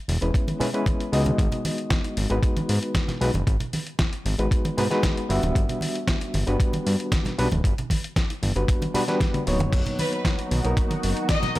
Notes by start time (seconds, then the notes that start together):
0.08 E1, open hi-hat, high conga
0.21 E1 G#3 B3 C#4 E4 B4, closed hi-hat
0.34 kick, closed hi-hat
0.48 closed hi-hat, high conga
0.60 G#3 B3 C#4 E4 B4, open hi-hat, low conga
0.74 G#3 B3 C#4 E4 B4, closed hi-hat
0.86 kick, closed hi-hat, high conga
1.00 closed hi-hat
1.12 C#2 G#3 B3 D#4 F#4 D#5, open hi-hat
1.26 closed hi-hat, high conga, low conga
1.38 G#1, kick, closed hi-hat
1.52 closed hi-hat, low conga
1.65 open hi-hat, high conga
1.78 closed hi-hat
1.90 kick, snare, closed hi-hat
2.04 closed hi-hat, high bongo
2.17 G#1, open hi-hat, high conga
2.30 G#1 G#3 B3 D#4 F#4 B4, closed hi-hat
2.43 kick, closed hi-hat
2.57 closed hi-hat, high conga
2.69 G#2, open hi-hat
2.83 closed hi-hat
2.94 kick, snare, closed hi-hat, high conga
3.08 snare, closed hi-hat, low conga
3.21 B1 G#3 B3 D#4 F#4 B4, open hi-hat
3.34 F#1, closed hi-hat, high conga, low conga
3.47 G#1, kick, closed hi-hat
3.60 closed hi-hat, low conga
3.73 open hi-hat, high conga
3.87 closed hi-hat
3.99 kick, snare, closed hi-hat
4.13 closed hi-hat
4.25 G#1, open hi-hat, high conga
4.39 G#1 G#3 B3 D#4 F#4 B4, closed hi-hat
4.51 kick, closed hi-hat
4.65 closed hi-hat, high conga
4.78 G#2 G#3 B3 D#4 F#4 B4, open hi-hat, low conga
4.91 G#3 B3 D#4 F#4 B4, snare, closed hi-hat
5.03 kick, snare, closed hi-hat, high bongo, high conga
5.17 closed hi-hat
5.29 G1 G3 B3 D4 F#4 E5, open hi-hat
5.43 D1, closed hi-hat, high conga, low conga
5.55 G1, kick, closed hi-hat
5.69 closed hi-hat, low conga
5.81 open hi-hat, high conga
5.95 closed hi-hat
6.08 kick, snare, closed hi-hat
6.20 closed hi-hat, high bongo
6.34 G1, open hi-hat, high conga
6.47 G1 G3 B3 D4 F#4 B4, closed hi-hat
6.60 kick, closed hi-hat
6.73 closed hi-hat, high conga
6.86 G2, open hi-hat
7.00 closed hi-hat
7.12 kick, snare, closed hi-hat, high conga
7.25 snare, closed hi-hat, low conga
7.38 B1 G3 B3 D4 F#4 B4, open hi-hat
7.52 D1, closed hi-hat, high conga, low conga
7.64 G1, kick, closed hi-hat
7.78 closed hi-hat, low conga
7.90 kick, open hi-hat, high conga
8.04 closed hi-hat
8.16 kick, snare, closed hi-hat
8.30 closed hi-hat, high bongo
8.43 G1, open hi-hat, high conga
8.56 G1 G3 B3 D4 F#4 B4, closed hi-hat
8.68 kick, closed hi-hat
8.82 closed hi-hat, high conga
8.94 G3 B3 D4 F#4 B4, open hi-hat, low conga
9.08 G3 B3 D4 F#4 B4, snare, closed hi-hat
9.20 kick, snare, closed hi-hat, high bongo, high conga
9.34 closed hi-hat, high tom
9.46 D1 F#3 A#3 B3 D#4 C#5, open hi-hat, high bongo
9.59 closed hi-hat, mid tom, high conga, low conga
9.73 B1 D#4 F#4, kick, closed hi-hat, crash
9.86 closed hi-hat, low conga
9.99 B4, open hi-hat, high conga
10.13 B4, closed hi-hat
10.25 kick, snare, closed hi-hat
10.38 closed hi-hat, high bongo
10.51 B1, open hi-hat, high conga
10.64 B1 F#3 A#3 B3 D#4 A#4, closed hi-hat
10.77 kick, closed hi-hat
10.91 closed hi-hat, high conga
11.03 F#1, open hi-hat
11.17 closed hi-hat
11.29 D#5, kick, snare, closed hi-hat, high conga
11.42 snare, closed hi-hat, low conga
11.55 D#2 F#3 A#3 B3, open hi-hat